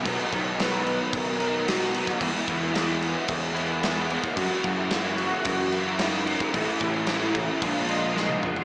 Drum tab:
CC |x-x-x-x-x-x-x-x-|x-x-x-x-x-x-x-x-|x-x-x-x-x-x-x-x-|x-x-x-x-x-x-----|
SD |----o-------o--o|----o-------o---|----o-------o---|----o-------o---|
T1 |----------------|----------------|----------------|-------------o--|
T2 |----------------|----------------|----------------|--------------o-|
FT |----------------|----------------|----------------|---------------o|
BD |o-o-----o------o|o-o-----o------o|o-o-----o------o|o-o---o-o-------|